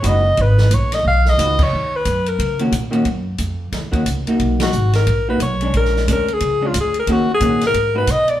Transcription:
0.02 0.36 F#1 medium
0.02 0.21 G#3 medium
0.02 0.22 D#4 medium
0.02 0.22 F#4 medium
0.02 0.22 B4 medium
0.02 kick soft
0.02 hi-hat pedal medium
0.02 ride medium
0.08 0.43 D#5 medium
0.37 0.70 G#1 medium
0.37 kick soft
0.37 ride medium
0.42 0.76 B4 medium
0.58 snare medium
0.71 1.03 A#1 medium
0.71 0.96 C#5 medium
0.71 kick soft
0.71 hi-hat pedal medium
0.71 ride medium
0.92 1.06 D#5 medium
0.92 snare soft
0.92 ride medium
1.05 1.37 B1 medium
1.05 1.31 F5 loud
1.05 kick soft
1.25 snare soft
1.30 1.65 D#5 medium
1.38 1.71 C#2 medium
1.38 1.57 G#3 medium
1.38 1.57 D#4 medium
1.38 1.57 F#4 medium
1.38 1.57 B4 medium
1.38 kick soft
1.38 hi-hat pedal medium
1.38 ride medium
1.59 kick medium
1.59 crash medium
1.64 1.98 C#5 medium
1.73 2.05 D#2 medium
1.96 2.30 B4 medium
2.05 2.38 F#2 medium
2.05 kick soft
2.05 hi-hat pedal soft
2.05 ride medium
2.26 2.61 A#4 medium
2.26 ride soft
2.39 2.71 C#3 medium
2.39 kick soft
2.39 ride medium
2.59 2.71 D#3 medium
2.59 2.71 A#3 medium
2.59 2.71 C#4 medium
2.59 2.72 F#4 medium
2.59 ride soft
2.72 3.04 A#2 medium
2.72 kick soft
2.72 hi-hat pedal medium
2.72 ride medium
2.91 3.03 D#3 medium
2.91 3.03 A#3 medium
2.91 3.04 C#4 medium
2.91 3.04 F#4 medium
2.91 ride soft
3.05 3.38 F#2 medium
3.05 kick soft
3.05 ride medium
3.38 3.71 F2 medium
3.38 kick soft
3.38 hi-hat pedal medium
3.38 ride medium
3.72 3.92 D#2 medium
3.72 kick soft
3.72 snare soft
3.72 ride medium
3.92 4.04 D#3 medium
3.92 4.04 A#3 medium
3.92 4.04 C#4 medium
3.92 4.04 F#4 medium
3.92 muted upright bass stroke soft
3.92 kick medium
3.92 ride soft
4.06 4.25 C#2 medium
4.06 kick soft
4.06 hi-hat pedal medium
4.06 ride medium
4.27 4.71 A#3 medium
4.27 4.71 D#4 medium
4.27 4.72 F#4 medium
4.27 muted upright bass stroke soft
4.27 ride soft
4.39 4.72 B1 medium
4.39 kick soft
4.39 ride medium
4.60 4.93 F#4 medium
4.60 snare medium
4.60 ride medium
4.72 5.05 G#1 medium
4.72 hi-hat pedal medium
4.93 5.26 A#4 medium
4.93 snare soft
4.93 ride soft
5.07 5.39 A#1 medium
5.07 kick soft
5.07 ride medium
5.29 5.39 A#3 medium
5.29 5.39 D#4 medium
5.29 5.40 F#4 medium
5.29 5.41 B4 medium
5.40 5.72 B1 medium
5.40 5.72 C#5 medium
5.40 kick soft
5.40 hi-hat pedal soft
5.40 ride medium
5.61 6.05 G#3 medium
5.61 6.05 C#4 medium
5.61 6.06 D4 medium
5.61 ride soft
5.74 6.06 A#1 medium
5.74 6.07 A#4 medium
5.74 kick soft
5.74 ride medium
5.85 snare soft
5.96 snare soft
6.08 6.40 D2 medium
6.08 6.26 G#3 medium
6.08 6.26 C#4 medium
6.08 6.26 D4 medium
6.08 kick soft
6.08 hi-hat pedal medium
6.08 ride medium
6.13 6.35 A#4 medium
6.28 ride soft
6.33 6.69 G#4 medium
6.40 6.73 C#2 medium
6.40 kick soft
6.40 ride medium
6.61 6.73 G#3 medium
6.61 6.73 C#4 medium
6.61 6.73 D4 medium
6.67 6.77 F4 medium
6.74 7.06 D2 medium
6.74 kick soft
6.74 hi-hat pedal medium
6.74 ride medium
6.81 6.97 G#4 medium
6.94 ride soft
7.00 7.14 A#4 medium
7.07 7.40 D#2 medium
7.07 7.26 D#3 medium
7.07 7.26 A#3 medium
7.07 7.27 C#4 medium
7.07 7.27 F#4 medium
7.07 kick soft
7.07 ride medium
7.12 7.30 F#4 medium
7.35 7.62 G#4 medium
7.40 7.73 A#2 medium
7.40 7.59 D#3 medium
7.40 7.59 A#3 medium
7.40 7.60 C#4 medium
7.40 7.60 F#4 medium
7.40 kick soft
7.40 hi-hat pedal soft
7.40 ride medium
7.61 snare soft
7.61 ride soft
7.67 7.95 A#4 medium
7.74 8.07 G#2 medium
7.74 kick soft
7.74 ride medium
7.95 8.06 G#3 medium
7.95 8.07 D#4 medium
7.95 8.07 F#4 medium
7.95 8.07 B4 medium
7.95 8.13 B4 medium
8.07 8.40 B2 medium
8.07 kick soft
8.07 hi-hat pedal medium
8.07 ride medium
8.11 8.32 D#5 medium
8.28 8.40 D5 medium
8.28 ride soft

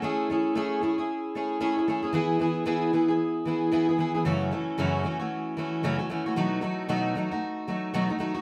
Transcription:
0.02 0.28 A3 medium
0.02 0.30 C#4 medium
0.02 0.30 E4 medium
0.02 0.30 G#4 medium
0.30 0.54 A3 medium
0.30 0.55 C#4 medium
0.30 0.56 E4 medium
0.30 0.56 G#4 medium
0.55 0.80 A3 medium
0.55 0.81 C#4 medium
0.55 0.82 E4 medium
0.55 0.83 G#4 medium
0.81 0.98 A3 medium
0.81 0.98 C#4 medium
0.81 0.98 E4 medium
0.81 0.97 G#4 medium
0.98 1.35 C#4 soft
0.98 1.35 E4 medium
0.98 1.35 G#4 medium
1.35 1.59 A3 medium
1.35 1.59 C#4 medium
1.35 1.60 E4 medium
1.35 1.60 G#4 medium
1.60 1.77 A3 medium
1.60 1.77 C#4 medium
1.60 1.77 E4 medium
1.60 1.76 G#4 medium
1.77 1.87 C#4 soft
1.77 1.88 E4 medium
1.77 1.88 G#4 medium
1.88 2.04 A3 medium
1.88 2.04 C#4 medium
1.88 2.02 E4 medium
1.88 2.01 G#4 medium
2.03 2.13 C#4 soft
2.03 2.13 E4 medium
2.03 2.14 G#4 medium
2.13 2.38 E3 medium
2.13 2.39 B3 medium
2.13 2.40 E4 medium
2.13 2.40 G#4 medium
2.39 2.64 E3 medium
2.39 2.65 B3 medium
2.39 2.65 E4 medium
2.39 2.66 G#4 medium
2.66 2.92 E3 medium
2.66 2.92 B3 medium
2.66 2.93 E4 medium
2.66 2.94 G#4 medium
2.93 3.09 E3 medium
2.93 3.09 B3 medium
2.93 3.09 E4 medium
2.93 3.07 G#4 medium
3.08 3.46 B3 soft
3.08 3.46 E4 soft
3.08 3.46 G#4 medium
3.45 3.70 E3 medium
3.45 3.71 B3 medium
3.45 3.72 E4 medium
3.45 3.72 G#4 medium
3.72 3.88 E3 medium
3.72 3.88 B3 medium
3.72 3.88 E4 medium
3.72 3.87 G#4 medium
3.89 3.98 B3 soft
3.89 3.99 E4 soft
3.89 3.99 G#4 medium
3.98 4.14 E3 medium
3.98 4.15 B3 medium
3.98 4.14 E4 medium
3.98 4.13 G#4 medium
4.14 4.25 B3 medium
4.14 4.26 E4 soft
4.14 4.25 G#4 medium
4.25 4.51 F#2 medium
4.25 4.52 C#3 medium
4.25 4.50 E3 medium
4.25 4.51 A3 medium
4.25 4.52 C#4 medium
4.25 4.52 F#4 medium
4.51 4.77 E3 medium
4.51 4.78 A3 medium
4.51 4.78 C#4 medium
4.51 4.79 F#4 medium
4.78 5.04 F#2 medium
4.78 5.04 C#3 medium
4.78 5.02 E3 medium
4.78 5.03 A3 medium
4.78 5.04 C#4 loud
4.78 5.05 F#4 loud
5.03 5.20 E3 medium
5.03 5.20 A3 medium
5.03 5.19 C#4 medium
5.03 5.18 F#4 medium
5.19 5.56 E3 soft
5.19 5.57 A3 soft
5.19 5.57 C#4 medium
5.19 5.57 F#4 medium
5.57 5.83 E3 medium
5.57 5.83 A3 medium
5.57 5.84 C#4 medium
5.57 5.84 F#4 medium
5.83 5.99 F#2 medium
5.83 5.99 C#3 medium
5.83 5.99 E3 medium
5.83 5.99 A3 medium
5.83 5.98 C#4 medium
5.83 5.98 F#4 medium
5.99 6.08 E3 soft
5.99 6.09 A3 soft
5.99 6.10 C#4 medium
5.99 6.09 F#4 medium
6.09 6.25 E3 medium
6.09 6.25 A3 medium
6.09 6.26 C#4 medium
6.09 6.25 F#4 medium
6.26 6.36 E3 soft
6.26 6.36 A3 medium
6.26 6.37 C#4 medium
6.26 6.36 F#4 medium
6.36 6.62 B2 medium
6.36 6.60 F#3 medium
6.36 6.61 A3 medium
6.36 6.62 D#4 medium
6.36 6.63 F#4 medium
6.61 6.88 F#3 medium
6.61 6.88 A3 medium
6.61 6.88 D#4 medium
6.61 6.88 F#4 medium
6.89 7.15 B2 medium
6.89 7.14 F#3 medium
6.89 7.15 A3 medium
6.89 7.15 D#4 medium
6.89 7.15 F#4 medium
7.15 7.31 F#3 medium
7.15 7.31 A3 medium
7.15 7.31 D#4 medium
7.15 7.30 F#4 medium
7.31 7.67 A3 medium
7.31 7.68 D#4 medium
7.31 7.68 F#4 medium
7.68 7.93 F#3 medium
7.68 7.93 A3 medium
7.68 7.93 D#4 medium
7.68 7.94 F#4 medium
7.94 8.09 B2 medium
7.94 8.10 F#3 loud
7.94 8.10 A3 medium
7.94 8.09 D#4 loud
7.94 8.07 F#4 medium
8.08 8.19 A3 medium
8.08 8.19 D#4 medium
8.08 8.19 F#4 medium
8.19 8.35 F#3 medium
8.19 8.36 A3 medium
8.19 8.34 D#4 medium
8.19 8.33 F#4 medium
8.34 8.41 A3 medium
8.34 8.41 D#4 soft
8.34 8.41 F#4 medium

